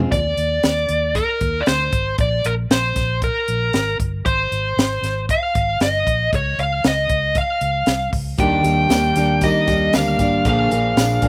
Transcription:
Already playing: F2 F3 G#3 C4 F4 G#4
0.12 D#2 D5, kick, closed hi-hat
0.37 D#2, closed hi-hat
0.63 D#2, snare, closed hi-hat
0.89 D#2, closed hi-hat
1.15 A#4, kick, closed hi-hat
1.41 D#2, kick, closed hi-hat
1.61 D5
1.66 D2 C5, snare, closed hi-hat
1.93 G#1, kick, closed hi-hat
2.18 A#1 D5, kick, closed hi-hat
2.45 A#1 A#4, closed hi-hat
2.70 A#1 C5, snare, closed hi-hat
2.96 A#1, kick, snare, closed hi-hat
3.22 A#4, kick, closed hi-hat
3.48 A#1, closed hi-hat
3.73 G#1, snare, closed hi-hat
3.99 G1, kick, closed hi-hat
4.26 G#1 C5, kick, closed hi-hat
4.52 G#1, closed hi-hat
4.77 G#1, snare, closed hi-hat
5.02 G#1, snare, closed hi-hat
5.29 F5, kick, closed hi-hat
5.55 G#1, kick, closed hi-hat
5.80 G1 D#5, snare, closed hi-hat
6.07 A#1, kick, closed hi-hat
6.33 C#2 C#5, kick, closed hi-hat
6.58 C#2 F5, closed hi-hat
6.84 C#2 D#5, snare, closed hi-hat
7.09 C#2, kick, closed hi-hat
7.35 F5, kick, closed hi-hat
7.61 C#2, closed hi-hat
7.86 C2, snare, closed hi-hat
8.13 C#2, kick, open hi-hat
8.38 D#2 D#3 G3 A#3 D4 G4 G5, kick, closed hi-hat
8.63 D#2 G3 A#3 D4 G4, closed hi-hat, tambourine
8.89 D#2 G3 A#3 D4 G4, snare, closed hi-hat, tambourine
9.15 D#2 G3 A#3 D4 G4, snare, closed hi-hat, tambourine
9.41 D#3 G3 A#3 D4 G4 D#5, kick, closed hi-hat, tambourine
9.67 D#2 G3 A#3 D4 G4, kick, closed hi-hat, tambourine
9.93 D2 G3 A#3 D4 G4 F5, snare, closed hi-hat, tambourine
10.19 G#1 A#3 D4 G4, kick, closed hi-hat, tambourine
10.45 A#1 A#2 D3 F3 A#3 D4 G#4 F5, kick, closed hi-hat
10.71 A#1 F3 A#3 D4 G#4, closed hi-hat, tambourine
10.96 A#1 F3 A#3 D4 G#4, snare, closed hi-hat, tambourine
11.22 A#1 F3 A#3 D4 G#4, kick, closed hi-hat

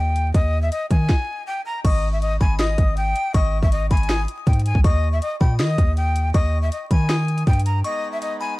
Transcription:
Already playing: D#2 G5
0.16 closed hi-hat
0.34 D#2 D#5, kick, closed hi-hat
0.62 E5
0.72 D#5, closed hi-hat
0.91 D#3 G#5, kick, closed hi-hat
1.09 kick, snare
1.47 G5
1.66 A#5
1.84 G#1 D#5 C#6, kick, closed hi-hat, crash
2.13 E5
2.22 D#5, closed hi-hat
2.41 G#1 G#5 B5, kick
2.59 D#5 D#6, snare, closed hi-hat
2.78 G#1, kick, closed hi-hat
2.97 G5, closed hi-hat
3.16 closed hi-hat
3.34 G#1 D#5 C#6, kick, closed hi-hat
3.63 G#1 E5, kick
3.72 D#5, closed hi-hat
3.91 G#1 G#5 B5, kick, closed hi-hat
3.97 closed hi-hat
4.03 closed hi-hat
4.09 D#6, snare, closed hi-hat
4.28 closed hi-hat
4.47 G#2 G5, kick, closed hi-hat
4.53 closed hi-hat
4.59 closed hi-hat
4.66 G#5, closed hi-hat
4.75 B1, kick
4.84 D#2 D#5 C#6, kick, closed hi-hat
5.13 E5
5.22 D#5, closed hi-hat
5.40 A#2 G5 B5, kick
5.59 D#3 D#5 D#6, snare, closed hi-hat
5.78 D#2, kick, closed hi-hat
5.97 G5, closed hi-hat
6.16 closed hi-hat
6.34 D#2 D#5 C#6, kick, closed hi-hat
6.63 E5
6.72 D#5, closed hi-hat
6.91 D#3 G#5 B5, kick, closed hi-hat
7.09 D#6, cross-stick, snare, closed hi-hat
7.28 closed hi-hat
7.38 closed hi-hat
7.47 G2 G5, kick, closed hi-hat
7.53 closed hi-hat
7.59 closed hi-hat
7.66 A#5, closed hi-hat
7.84 G#3 B3 D#4 D#5 C#6, closed hi-hat
8.13 E5
8.22 D#5, closed hi-hat
8.40 G#5 B5

